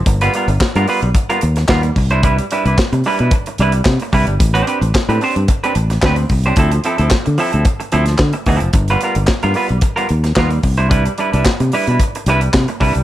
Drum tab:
HH |xxxx-xoxxxxx-xox|xxxx-xoxxxxx-xox|xxxx-xoxxxxx-xox|xxxx-xoxxxxx-xox|
CP |----x-------x---|----x-------x---|----x-------x---|----x-------x---|
SD |----o------oo---|----o-------o---|----o------oo---|----o------oo---|
BD |o---o---o---o-o-|o---o---o---o-o-|o---o---o---o-o-|o---o---o---o-o-|

HH |xxxx-xoxxxxx-xox|xxxx-xoxxxxx-xox|
CP |----x-------x---|----x-------x---|
SD |----o------oo---|----o-------o---|
BD |o---o---o---o-o-|o---o---o---o-o-|